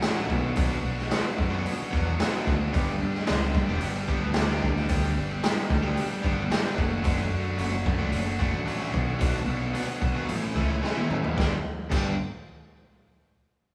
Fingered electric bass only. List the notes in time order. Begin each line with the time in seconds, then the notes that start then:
Already playing: A1
0.30 B1
0.85 B1
1.39 F#2
1.93 E2
2.47 D2
2.74 G1
3.02 G2
3.30 C#2
3.55 G2
3.68 E1
3.82 G1
4.23 D2
4.90 D2
5.18 G1
5.70 D2
6.24 G1
6.78 F#1
7.05 F#1
7.32 F#2
7.59 F#1
7.86 F#2
7.99 C#2
8.12 F#1
8.53 A1
8.94 B1
9.47 B1
10.03 B1
10.29 A1
10.56 C#2
11.11 A1
11.38 G1
11.92 G1